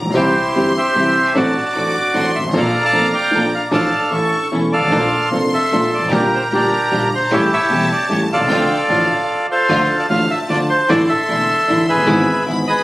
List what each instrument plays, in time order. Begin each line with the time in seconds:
Already playing: violin section A#5
0.01 upright bass A1, grand piano A#1
0.06 upright bass A#1
0.10 grand piano B1 C3 E3, upright bass B1
0.14 grand piano C2 G3 C4 G4, upright bass C2, string section C4 E4 G4, bandoneon E4 G4 C5, violin section C6
0.55 grand piano G1 G2 E3 G3 C4 G4, upright bass G1, string section C4 E4 G4
0.77 bandoneon G4 C5 E5
0.95 upright bass C2, grand piano C2 C3 E3 G3 C4 G4, string section C4 E4 G4
1.29 violin section G#5
1.35 grand piano A1 A2 F#3 C4 D4 A4, upright bass A1, string section C4 D4 F#4, bandoneon F#4 D5, violin section A5
1.75 grand piano A1 A2 F#3 C4 D4 A4, upright bass A1, string section C4 D4 F#4, violin section D6
2.13 grand piano A1 A2 F#3 C4 D4 A4, upright bass A1, string section C4 D4 F#4, violin section C6
2.35 grand piano G1, bandoneon E5
2.40 upright bass G1, grand piano G#1
2.44 upright bass G#1
2.49 grand piano A1, upright bass A1
2.53 grand piano A#1 A#2 F3 A#3 D4 A4, upright bass A#1, string section A#3 D4 A4, bandoneon A4 D5 F5, violin section A#5
2.85 bandoneon D5 F5 A5
2.92 grand piano F1 F2 F3 A#3 D4 A4, upright bass F1, string section A#3 D4 A4
3.14 bandoneon D5 G5
3.31 grand piano A#1 A#2 F3 A#3 D4 A4, upright bass A#1, string section A#3 D4 A4
3.55 bandoneon F5
3.71 grand piano A1 A2 F3 A3 D4 A4, upright bass A1, string section D4 F4 A4, bandoneon A4 D5 F5, violin section A5
4.10 grand piano A1 A2 E3 A3 C#4 A4, upright bass A1, string section C#4 E4 A4, violin section C#6
4.51 grand piano E1 E2 E3 A3 C#4 A4, upright bass E1, string section C#4 E4 A4
4.72 bandoneon A4 D5 F5
4.77 upright bass G1, grand piano G1
4.82 upright bass G#1, grand piano G#1
4.87 upright bass A1, grand piano A1, string section A#3 D4
4.92 upright bass A#1, grand piano A#1 A#2 F3 A#3 D4 A4, string section A4, violin section C6
5.31 grand piano F1 F2 F3 A#3 D4 A4, upright bass F1, string section A#3 D4 A4
5.54 bandoneon A4 E5
5.71 upright bass A#1, grand piano A#1 A#2 F3 A#3 D4 A4, string section A#3 D4 A4
5.94 upright bass G1, bandoneon D5
5.98 grand piano G1, upright bass G#1
6.03 grand piano G#1, upright bass A1
6.08 grand piano A1, upright bass A#1, string section A#3 D4 G4
6.12 grand piano A#1 A#2 D3 G3 A#3 G4, bandoneon G4 A#4 D5, violin section A#5
6.34 bandoneon C5
6.51 upright bass A#1, grand piano A#1 A#2 D3 G3 A#3 G4, string section A#3 D4 G4, bandoneon D4 G4 A#4
6.91 grand piano A#1 A#2 D3 G3 A#3 G4, upright bass A#1, string section A#3 D4 G4
7.15 bandoneon C5
7.31 upright bass A1, grand piano A1 A2 C#3 G3 A3 E4, string section A3 C#4 G4, bandoneon E4 G4 C#5, violin section A5
7.53 bandoneon G4 C#5 E5
7.70 grand piano E1 E2 C#3 G3 A3 E4, upright bass E1, string section A3 C#4 G4
7.92 bandoneon D5
8.09 grand piano A1 A2 C#3 G3 A3 E4, upright bass A1, string section A3 C#4 G4, bandoneon C#5
8.32 upright bass B1, grand piano B1, bandoneon F4 A4 D5
8.39 upright bass C2, grand piano C2
8.44 upright bass C#2, grand piano C#2
8.49 upright bass D2, grand piano D2 D3 F3 A3 F4, string section A3 D4 F4, violin section G5
8.88 upright bass A1, grand piano A1 A2 D3 F3 A3 F4, string section A3 D4 F4, violin section F5
9.51 bandoneon F4 A4 C5
9.68 upright bass D2, grand piano D2 D3 F3 A3 F4, string section A3 D4 F4, violin section A5
9.99 bandoneon D5
10.10 grand piano A1 A2 D3 F3 A3 F4, upright bass A1, string section A3 D4 F4, bandoneon F5
10.30 bandoneon E5
10.49 upright bass D2, grand piano D2 D3 F3 A3 F4, string section A3 D4 F4, bandoneon D5
10.70 bandoneon C5
10.89 grand piano A1 A2 D3 E3 A3 E4, upright bass A1, string section A3 D4 E4, bandoneon A4 D5, violin section C6
11.09 bandoneon A4 E5
11.28 grand piano E1 E2 D3 E3 A3 E4, upright bass E1, string section A3 D4 E4
11.68 upright bass A1, grand piano A1 A2 D3 E3 A3 E4, string section A3 D4 E4
11.88 bandoneon G#4 B4 E5
11.93 upright bass F1, grand piano F1
11.98 upright bass F#1, grand piano F#1
12.02 upright bass G1, grand piano G1, string section G#3
12.07 grand piano G#1 G#2 E3 G#3 B3 G#4, upright bass G#1, string section B3 E4, violin section B5
12.46 upright bass G#1, grand piano G#1 G#2 E3 G#3 B3 G#4, string section G#3 B3 E4
12.68 bandoneon G#4 B4 D#5